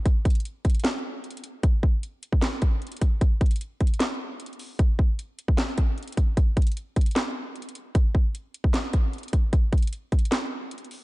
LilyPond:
\new DrumStaff \with { instrumentName = "Drums" } \drummode { \time 4/4 \tempo 4 = 152 <hh bd>8 <hh bd>32 hh32 hh32 hh32 hh8 <hh bd>32 hh32 hh32 hh32 <hc hh sn>4 \tuplet 3/2 { hh16 hh16 hh16 hh16 r16 r16 } | <hh bd>8 bd8 hh8 hh16 bd16 <hc hh sn>8 <hh bd>8 hh32 hh32 hh32 hh32 <hh bd>8 | <hh bd>8 <hh bd>32 hh32 hh32 hh32 \tuplet 3/2 { hh16 r16 r16 <hh bd>16 hh16 hh16 } <hc hh sn>4 \tuplet 3/2 { hh16 hh16 hh16 hho16 r16 r16 } | <hh bd>8 bd8 hh8 hh16 bd16 <hc hh sn>8 <hh bd>8 hh32 hh32 hh32 hh32 <hh bd>8 |
<hh bd>8 <hh bd>32 hh32 hh32 hh32 hh8 <hh bd>32 hh32 hh32 hh32 <hc hh sn>4 \tuplet 3/2 { hh16 hh16 hh16 hh16 r16 r16 } | <hh bd>8 bd8 hh8 hh16 bd16 <hc hh sn>8 <hh bd>8 hh32 hh32 hh32 hh32 <hh bd>8 | <hh bd>8 <hh bd>32 hh32 hh32 hh32 \tuplet 3/2 { hh16 r16 r16 <hh bd>16 hh16 hh16 } <hc hh sn>4 \tuplet 3/2 { hh16 hh16 hh16 hho16 r16 r16 } | }